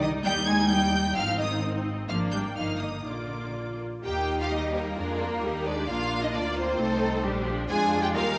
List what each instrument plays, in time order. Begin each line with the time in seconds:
Already playing: double bass section C2, viola section G3 D#4
0.01 cello section D#3, violin section D#5 D#6
0.24 double bass section D#2, cello section G3, viola section G3, violin section G5 G6
0.46 cello section G#3, violin section G#5 G#6
0.67 cello section G3, violin section G5 G6
1.15 double bass section G#1, cello section F3, viola section C4 D#4, violin section F5 F6
1.37 cello section D#3, violin section D#5 D#6
2.08 double bass section G#1, cello section F3, viola section A#3 D4, violin section F5 F6
2.31 cello section G3, violin section G5 G6
2.55 double bass section G1, cello section F3, viola section A#3 D#4, violin section F5 F6
2.78 cello section D#3, violin section D#5 D#6
3.04 double bass section A#1, cello section D3, viola section A#3 F4, violin section D5 D6
4.03 double bass section D#2, viola section A#3 D#4, violin section G4 G5, cello section G4
4.39 violin section F4 F5
4.50 viola section G3, violin section D#4 D#5
4.72 violin section A#3 A#4
4.97 double bass section F2, viola section G#3 D4, cello section F4
5.20 viola section A#3
5.43 double bass section D#2, viola section G3 D#4, cello section G4
5.65 viola section G#3, violin section D4 D5
5.88 double bass section A#1, viola section A#3 D4, violin section F4 F5, cello section F4
6.23 violin section D#4 D#5
6.33 double bass section D2, viola section A#3 F4, violin section D4 D5
6.57 violin section C4 C5
6.78 double bass section C2, viola section A3 D#4, cello section A4
7.24 double bass section A#1, viola section G3 D4, cello section G4
7.46 viola section F3
7.68 double bass section F2, viola section G#3 D4, cello section F4, violin section G#4 G#5
8.02 violin section G4 G5
8.14 double bass section D#2, viola section G3 D#4, violin section F4 F5, cello section A#4